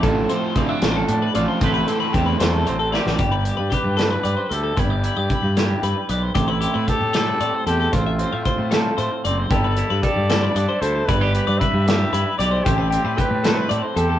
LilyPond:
<<
  \new Staff \with { instrumentName = "Clean electric guitar" } { \time 6/8 \key a \minor \tempo 4. = 76 a'8 c''8 d''16 e''16 c''16 a'8 b'16 d''16 c''16 | a'16 b'16 a'16 b'16 g'16 b'16 c''16 a'16 c''16 a'16 d''8 | g'16 b'16 g'16 b'16 g'8 a'16 b'16 d''16 c''16 a'16 a'16 | b'16 d''16 b'16 d''16 b'8 g'8 b'8 d''16 c''16 |
g'16 b'16 g'16 b'16 g'8 a'16 b'16 d''16 c''16 a'16 a'16 | c''16 e''16 c''16 e''16 c''8 a'8 c''8 d''16 c''16 | g'16 b'16 g'16 b'16 g'8 a'16 b'16 d''16 c''16 a'16 a'16 | b'16 d''16 b'16 d''16 b'8 g'8 b'8 d''16 c''16 |
g'16 b'16 g'16 b'16 g'8 a'16 b'16 d''16 c''16 a'16 a'16 | }
  \new Staff \with { instrumentName = "Trumpet" } { \time 6/8 \key a \minor r2. | r2. | g'4 b'4. a'8 | g'2~ g'8 r8 |
e'4 a'4. g'8 | f'2~ f'8 r8 | a'4 d''4. c''8 | b'4 e''4. d''8 |
g'4 b'4 r8 g'8 | }
  \new Staff \with { instrumentName = "Clean electric guitar" } { \time 6/8 \key a \minor << { c'4 c'16 d'8. d'8 f'8 | <a c' g' b'>4 c'4 c'8 g'8 | r4 g'8 g'8 r8 g'8 | e'8 e'8 e'8 e'8 r8 b'8 |
c'8 c'8 g'8 g'4 c'8 | c'8 c'8 c'8 c'4 c'8 | e'8 e'8 a'8 e'4 e'8 | e'16 g'16 g'8 b'8 g'4 g'8 |
<a c'>8 c'8 g'8 c'4 c'8 | } \\ { a,8 a4 a4. | a,8 a4 a4. | g2 g'8 r8 | g2 e'4 |
a,2 c'8 r8 | a,2 a4 | g2 d'4 | g2 e'4 |
a,2 a4 | } >> }
  \new Staff \with { instrumentName = "Overdriven electric guitar" } { \time 6/8 \key a \minor <f a c' f'>8 <f a c' f'>8 <f a c' f'>8 <f a c' f'>8 r8 <f a c' f'>8 | <e a c' e'>8 <e a c' e'>8 <e a c' e'>8 <e a c' e'>8 r8 <e a c' e'>8 | r2. | r2. |
r2. | r2. | r2. | r2. |
r2. | }
  \new Staff \with { instrumentName = "Fingered electric bass" } { \clef bass \time 6/8 \key a \minor a,,8 r8 d,16 r16 a,,8 a,8 a,,16 r16 | a,,8 r8 e,8 e,8 a,,8. a,,16 | g,,8. g,16 r16 g,8. g,16 r16 d,8 | g,,8. g,16 r16 g,8. g,16 r16 b,,8 |
a,,8. a,16 r16 a,8. a,16 r16 e,8 | a,,8. a,16 r16 a,8. a,16 r16 fis,,8 | g,,8. g,16 r16 g,8. g,16 r16 d,8 | g,,8. g,16 r16 g,8. g,16 r16 b,,8 |
a,,8. a,16 r16 a,8. a,16 r16 e,8 | }
  \new DrumStaff \with { instrumentName = "Drums" } \drummode { \time 6/8 <hh bd>8 hh8 <hh bd>8 <hh sn>8 hh8 hh8 | <hh bd>8 hh8 <hh bd>8 <hh sn>8 hh8 sn16 sn16 | <hh bd>8 hh8 <hh bd>8 <hh sn>8 hh8 hh8 | <hh bd>8 hh8 <hh bd>8 <hh sn>8 hh8 hh8 |
<hh bd>8 hh8 <hh bd>8 <hh sn>8 hh8 hh8 | <hh bd>8 hh8 <hh bd>8 <hh sn>8 hh8 hh8 | <hh bd>8 hh8 <hh bd>8 <hh sn>8 hh8 hh8 | <hh bd>8 hh8 <hh bd>8 <hh sn>8 hh8 hh8 |
<hh bd>8 hh8 <hh bd>8 <hh sn>8 hh8 hh8 | }
>>